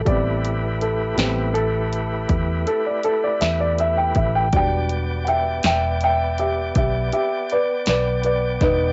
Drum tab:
HH |xxxxxxxxxxxx|xxxxxxxxxxxx|
SD |---o-----o--|---o-----o-o|
BD |o-----o----o|o-----o----o|